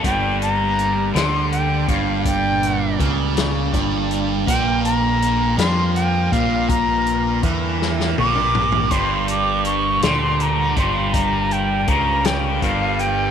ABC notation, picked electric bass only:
X:1
M:6/8
L:1/8
Q:3/8=54
K:Gm
V:1 name="Picked electric bass" clef=bass
G,,,3 D,,2 G,,,- | G,,,2 ^C,,2 G,,,2 | B,,,3 F,,2 B,,,- | B,,,2 =E,,2 B,,,2 |
G,,,3 D,,2 G,,,- | G,,,2 ^C,,2 G,,,2 |]